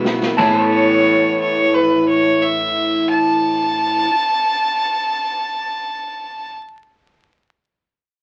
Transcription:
Already playing: B1 B2 E4 G#4 B4
0.04 B3 E4, snare
0.22 snare
0.37 A1 A2 E3 B3 C#4 E4 G#4 B4 A5, kick, splash
0.56 A4
0.61 C#5
0.72 C#5
1.40 C#5
1.74 B4
2.08 C#5
2.42 E5
3.10 A5

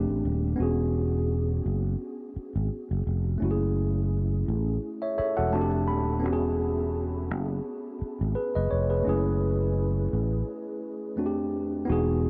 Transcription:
Already playing: A3 C4 D4 G4
0.09 A1
0.25 D#1
0.56 E1 B3 C#4
0.60 F#4 G#4
1.66 F#1
2.36 muted fretless electric bass stroke
2.56 G#1
2.91 F#1
3.07 F1
3.38 A3 C#4
3.42 F#1 E4 F#4
3.51 G#4
4.48 A1
5.02 C#5 E5
5.18 A4 C#5 E5, muted fretless electric bass stroke
5.37 E1 F#4 A4 F#5
5.51 F1 A3 C4 D4 F#4 A5
5.61 G4
5.88 D#1 B5
6.20 B3 C#4
6.24 E1 F#4 G4
6.33 G#4
7.31 F#1
8.02 muted fretless electric bass stroke
8.21 G#1
8.35 G#4 B4
8.55 F#1 B4 D#5
8.71 F1 C#5
8.90 G#4 B4
9.02 A3 C#4
9.07 F#1 E4 G#4
10.13 A1
11.16 F2 A3 C4 D4 F#4
11.26 G4
11.85 B3 D#4
11.90 E1 F#4 G#4

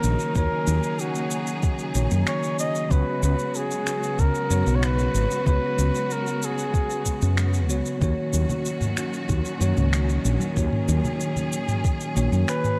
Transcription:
Already playing: C#3 D#3 F#3 A#3 D#4 F#4 A#4 C#5
0.03 A#1, shaker
0.19 shaker
0.33 D#2 D#3 A#3 F#4 G#4 A#4, kick, shaker
0.38 C#5
0.67 D#2, shaker
0.83 shaker
0.99 F#4, shaker
1.15 shaker
1.31 shaker
1.47 shaker
1.63 kick, shaker
1.79 shaker
1.94 A#1 D#3 A#3 F#4 C#5, shaker
2.11 F#2, shaker
2.27 C#5, finger snap, shaker
2.43 shaker
2.59 D#5, shaker
2.75 shaker
2.89 C#2 C#3 G#3 B3 F#4 B4, kick, shaker
2.93 C#5
3.23 C#2 B4, shaker
3.39 shaker
3.55 G#4, shaker
3.71 shaker
3.87 finger snap, shaker
4.03 shaker
4.19 C#2 A#4, kick, shaker
4.35 shaker
4.50 F#2 C#3 B3 F#4 C#5, shaker
4.67 B1, shaker
4.76 C#5
4.83 B4, finger snap, shaker
4.99 shaker
5.14 G#1, shaker
5.31 shaker
5.44 C#2 C#3 B3 F#4 B4, kick, shaker
5.49 C#5
5.78 C#2, shaker
5.95 shaker
6.11 A#4, shaker
6.27 shaker
6.43 G#4, shaker
6.58 shaker
6.74 kick, shaker
6.90 shaker
7.06 kick, shaker
7.22 F#2, shaker
7.37 finger snap, shaker
7.54 shaker
7.68 C#2 C#3 B3 F#4 C#5, shaker
7.86 shaker
7.99 D#2 A#2 D#3 F#3 A#3 C#4 F#4, kick, shaker
8.03 C#5
8.33 D#2, high conga, shaker
8.49 low conga, shaker
8.65 shaker
8.81 mid tom, low conga, shaker
8.97 finger snap, shaker
9.13 shaker
9.29 D#2, kick, shaker
9.45 shaker
9.59 F#2 D#3 A#3 F#4 C#5, shaker
9.77 C#2, mid tom, shaker
9.93 finger snap, shaker
10.09 shaker
10.25 A#1, shaker
10.40 high conga, shaker
10.54 D#2 D#3 A#3 F#4 G#4, kick, shaker
10.59 C#5
10.73 mid tom
10.88 D#2, high conga, shaker
11.04 low conga, shaker
11.21 shaker
11.36 low conga, shaker
11.53 shaker
11.68 mid tom, shaker
11.85 kick, shaker
12.01 shaker
12.15 A#1 D#3 A#3 F#4 C#5, shaker
12.32 F#2, shaker
12.48 B4, finger snap, shaker
12.64 mid tom, shaker

